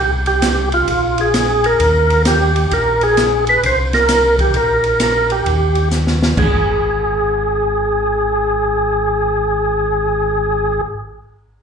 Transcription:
0.00 0.83 C2 medium
0.00 0.11 G4 medium
0.26 0.69 G4 medium
0.26 ride soft
0.42 snare medium
0.42 hi-hat pedal medium
0.42 ride medium
0.72 1.20 F4 medium
0.72 ride soft
0.88 1.75 A#1 medium
0.88 kick soft
0.88 ride medium
1.18 1.66 G#4 medium
1.18 ride soft
1.34 snare medium
1.34 hi-hat pedal medium
1.34 ride medium
1.64 2.22 A#4 medium
1.64 ride soft
1.80 2.67 D#2 medium
1.80 kick soft
1.80 ride medium
2.10 ride soft
2.25 2.73 G4 medium
2.25 snare medium
2.25 hi-hat pedal medium
2.25 ride medium
2.56 ride soft
2.71 3.59 A#1 medium
2.71 3.03 A#4 medium
2.71 kick soft
2.71 ride medium
3.01 3.45 G#4 loud
3.01 ride soft
3.17 snare medium
3.17 hi-hat pedal medium
3.17 ride medium
3.47 3.64 B4 medium
3.47 ride soft
3.63 4.51 C2 medium
3.63 3.79 C5 loud
3.63 kick soft
3.63 ride medium
3.93 4.36 A#4 loud
3.93 snare soft
3.93 ride soft
4.09 snare medium
4.09 hi-hat pedal medium
4.09 ride medium
4.39 4.56 G4 medium
4.39 kick soft
4.39 ride soft
4.54 5.42 A#1 medium
4.54 5.02 A#4 medium
4.54 kick soft
4.54 ride medium
4.84 ride soft
5.00 5.32 A#4 medium
5.00 snare medium
5.00 hi-hat pedal soft
5.00 ride medium
5.30 5.89 G4 medium
5.30 ride soft
5.46 6.34 D#2 medium
5.46 kick soft
5.46 ride medium
5.75 ride soft
5.91 snare soft
5.91 hi-hat pedal medium
6.07 snare medium
6.22 snare medium
6.37 10.80 G#1 medium
6.37 10.81 G#4 medium
6.37 kick medium
6.37 floor tom medium
6.37 crash medium

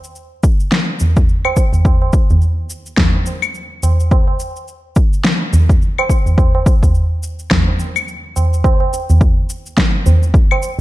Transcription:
0.04 shaker soft
0.16 shaker soft
0.43 kick loud
0.43 shaker medium
0.60 shaker soft
0.72 snare medium
0.72 shaker soft
1.00 tabla ge medium
1.00 shaker medium
1.16 kick loud
1.16 shaker soft
1.29 shaker soft
1.45 tabla na medium
1.45 claves medium
1.56 kick medium
1.56 tabla tin soft
1.56 shaker medium
1.73 tabla ge medium
1.73 shaker soft
1.85 kick loud
1.85 tabla na medium
1.85 tabla tin soft
1.85 shaker soft
2.02 tabla na medium
2.13 kick loud
2.13 shaker medium
2.30 tabla ge medium
2.30 shaker soft
2.42 shaker soft
2.70 shaker medium
2.86 shaker soft
2.97 kick loud
2.97 snare medium
2.97 tabla ge medium
2.97 shaker soft
3.16 tabla tin medium
3.26 tabla na soft
3.26 shaker medium
3.42 claves medium
3.42 shaker soft
3.54 shaker soft
3.83 tabla na soft
3.83 tabla ge medium
3.83 shaker medium
4.00 shaker soft
4.11 kick loud
4.11 tabla na medium
4.11 tabla tin soft
4.11 shaker soft
4.28 tabla na medium
4.40 shaker medium
4.56 shaker soft
4.68 shaker soft
4.96 kick loud
4.96 shaker medium
5.13 shaker soft
5.24 snare medium
5.24 shaker soft
5.53 tabla ge medium
5.53 shaker medium
5.69 kick medium
5.69 shaker soft
5.82 shaker soft
5.98 tabla na medium
5.98 claves medium
6.10 kick medium
6.10 tabla tin medium
6.10 shaker medium
6.26 tabla ge medium
6.26 shaker soft
6.38 kick loud
6.38 tabla na medium
6.38 tabla tin medium
6.38 shaker soft
6.55 tabla na medium
6.66 kick loud
6.66 shaker medium
6.83 kick medium
6.83 tabla ge medium
6.83 shaker soft
6.95 shaker soft
7.23 shaker medium
7.39 shaker soft
7.51 kick loud
7.51 snare medium
7.51 tabla ge medium
7.51 shaker soft
7.68 tabla tin soft
7.79 tabla na soft
7.79 shaker medium
7.96 claves medium
7.96 shaker soft
8.08 shaker soft
8.36 tabla na medium
8.36 tabla ge medium
8.36 shaker medium
8.53 shaker soft
8.64 kick loud
8.64 tabla na medium
8.64 shaker soft
8.80 tabla na medium
8.93 tabla tin medium
8.93 shaker medium
9.10 tabla ge medium
9.10 shaker soft
9.21 kick loud
9.21 shaker soft
9.50 shaker medium
9.66 shaker soft
9.77 kick loud
9.77 snare medium
9.77 shaker soft
10.06 tabla tin medium
10.06 tabla ge medium
10.06 shaker medium
10.23 shaker soft
10.34 kick loud
10.34 shaker soft
10.51 tabla na medium
10.51 claves medium
10.63 shaker medium

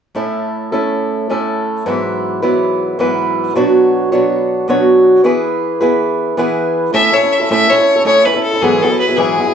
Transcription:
0.15 0.72 A2 medium
0.15 0.72 A3 medium
0.15 0.72 C#4 medium
0.15 0.72 E4 medium
0.15 0.71 A4 medium
0.72 1.28 A2 soft
0.72 1.29 A3 soft
0.72 1.29 C#4 medium
0.72 1.31 E4 soft
0.72 1.29 A4 medium
1.29 1.86 A2 medium
1.29 1.86 A3 medium
1.29 1.86 C#4 medium
1.29 1.86 E4 medium
1.29 1.87 A4 medium
1.86 2.42 G#2 medium
1.86 2.42 E3 medium
1.86 2.43 F#3 medium
1.86 2.43 B3 medium
1.86 2.41 E4 medium
1.86 2.42 B4 medium
2.42 2.98 G#2 soft
2.42 2.98 E3 medium
2.42 2.99 F#3 medium
2.42 3.00 B3 medium
2.42 2.99 E4 medium
2.42 3.00 B4 medium
2.99 3.55 G#2 medium
2.99 3.55 E3 medium
2.99 3.54 F#3 medium
2.99 3.56 B3 medium
2.99 3.56 E4 medium
2.99 3.57 B4 medium
3.55 4.12 B2 medium
3.55 4.12 F#3 medium
3.55 4.12 B3 medium
3.55 4.11 D4 medium
3.55 4.11 F#4 medium
3.55 4.11 C#5 medium
4.12 4.67 B2 medium
4.12 4.67 F#3 medium
4.12 4.69 B3 medium
4.12 4.68 D4 medium
4.12 4.68 F#4 medium
4.12 4.68 C#5 medium
4.68 5.24 B2 medium
4.68 5.23 F#3 medium
4.68 5.23 B3 medium
4.68 5.24 D4 medium
4.68 5.25 F#4 medium
4.68 5.25 C#5 medium
5.24 5.82 E3 medium
5.24 5.81 B3 medium
5.24 5.81 E4 medium
5.24 5.80 G#4 medium
5.24 5.79 B4 medium
5.81 6.37 E3 soft
5.81 6.36 B3 soft
5.81 6.38 E4 medium
5.81 6.38 G#4 medium
5.81 6.37 B4 medium
6.37 6.92 E3 medium
6.37 6.93 B3 medium
6.37 6.94 E4 medium
6.37 6.94 G#4 medium
6.37 6.94 B4 medium
6.93 7.13 A2 medium
6.93 7.11 A3 medium
6.93 7.11 C#4 medium
6.93 7.12 E4 medium
6.93 7.13 A4 medium
6.93 7.15 E5 loud
7.12 7.22 A3 medium
7.12 7.22 C#4 medium
7.12 7.22 E4 medium
7.12 7.20 A4 medium
7.12 7.34 C#5 medium
7.22 7.41 C#4 soft
7.22 7.40 E4 soft
7.22 7.38 A4 soft
7.33 7.50 E5 medium
7.40 7.50 C#4 soft
7.40 7.50 E4 soft
7.40 7.49 A4 medium
7.50 7.70 A2 medium
7.50 7.68 A3 medium
7.50 7.69 C#4 medium
7.50 7.70 E4 medium
7.50 7.71 A4 medium
7.50 7.71 E5 loud
7.69 7.79 A3 soft
7.69 7.79 C#4 medium
7.69 7.79 E4 medium
7.69 7.77 A4 medium
7.69 8.06 C#5 loud
7.78 7.97 C#4 soft
7.78 7.97 E4 soft
7.78 7.95 A4 soft
7.96 8.04 C#4 soft
7.96 8.05 E4 soft
7.96 8.05 A4 soft
8.05 8.26 A2 medium
8.05 8.24 A3 medium
8.05 8.25 C#4 medium
8.05 8.26 E4 medium
8.05 8.26 A4 medium
8.05 8.27 C#5 loud
8.25 8.35 A3 soft
8.25 8.35 C#4 medium
8.25 8.35 E4 medium
8.25 8.33 A4 medium
8.25 8.42 B4 medium
8.34 8.54 C#4 soft
8.34 8.53 E4 soft
8.34 8.52 A4 soft
8.43 8.63 A4 medium
8.53 8.62 C#4 soft
8.53 8.62 E4 soft
8.53 8.62 A4 soft
8.62 8.82 G#2 medium
8.62 8.83 E3 medium
8.62 8.81 F#3 medium
8.62 8.81 B3 medium
8.62 8.83 E4 medium
8.62 8.84 G#4 medium
8.62 8.83 G#4 medium
8.82 8.91 F#3 medium
8.82 8.90 B3 medium
8.82 8.90 E4 medium
8.82 8.89 G#4 medium
8.82 8.98 A4 medium
8.90 9.09 F#3 soft
8.90 9.08 B3 soft
8.90 9.08 E4 soft
8.90 9.07 G#4 soft
8.99 9.18 B4 medium
9.08 9.17 F#3 soft
9.08 9.17 B3 soft
9.08 9.18 E4 soft
9.08 9.18 G#4 soft
9.16 9.38 G#2 medium
9.16 9.38 E3 medium
9.16 9.36 F#3 medium
9.16 9.37 B3 medium
9.16 9.38 E4 medium
9.16 9.54 G#4 medium
9.16 9.39 G#4 medium
9.37 9.47 F#3 soft
9.37 9.48 B3 medium
9.37 9.47 E4 medium
9.37 9.45 G#4 medium
9.47 9.54 F#3 soft
9.47 9.54 B3 soft
9.47 9.54 E4 soft
9.47 9.54 G#4 soft

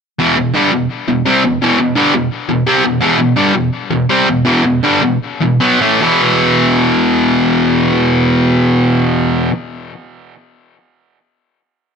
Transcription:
0.19 0.35 E2 medium
0.19 0.36 B2 medium
0.19 0.37 E3 loud
0.37 0.51 E2 medium
0.37 0.51 B2 medium
0.54 0.72 G2 loud
0.54 0.72 D3 medium
0.54 0.72 G3 loud
0.72 0.86 E2 medium
0.72 0.87 B2 medium
1.08 1.22 E2 medium
1.08 1.22 B2 medium
1.25 1.42 C3 loud
1.25 1.43 G3 loud
1.25 1.43 C4 loud
1.44 1.57 E2 medium
1.44 1.58 B2 medium
1.62 1.78 E2 loud
1.62 1.78 B2 loud
1.62 1.79 E3 loud
1.79 1.93 E2 medium
1.79 1.93 B2 medium
1.95 2.13 G2 medium
1.95 2.13 D3 loud
1.95 2.13 G3 loud
2.15 2.28 E2 medium
2.15 2.28 B2 medium
2.49 2.63 E2 medium
2.49 2.63 B2 medium
2.67 2.84 C3 loud
2.67 2.84 G3 medium
2.67 2.84 C4 loud
2.85 2.99 E2 medium
2.85 2.99 B2 medium
3.01 3.17 E2 loud
3.01 3.17 B2 loud
3.01 3.19 E3 loud
3.18 3.33 E2 medium
3.18 3.33 B2 medium
3.36 3.54 G2 medium
3.36 3.54 D3 loud
3.36 3.54 G3 loud
3.54 3.69 E2 medium
3.54 3.69 B2 medium
3.90 4.05 E2 medium
3.90 4.05 B2 medium
4.09 4.27 C3 medium
4.09 4.27 G3 loud
4.09 4.27 C4 loud
4.28 4.42 E2 medium
4.28 4.43 B2 medium
4.45 4.63 E2 loud
4.45 4.63 B2 loud
4.45 4.64 E3 loud
4.64 4.80 E2 medium
4.64 4.80 B2 medium
4.84 5.02 G2 loud
4.84 5.02 D3 loud
4.84 5.03 G3 loud
5.02 5.18 E2 medium
5.02 5.18 B2 medium
5.41 5.57 E2 medium
5.41 5.58 B2 medium
5.60 5.80 B2 loud
5.60 5.81 F#3 loud
5.60 5.81 B3 loud
5.80 6.01 A2 medium
5.80 6.01 E3 medium
5.80 6.02 A3 loud
6.00 9.50 E2 loud
6.00 9.52 B2 loud
6.00 9.53 E3 loud

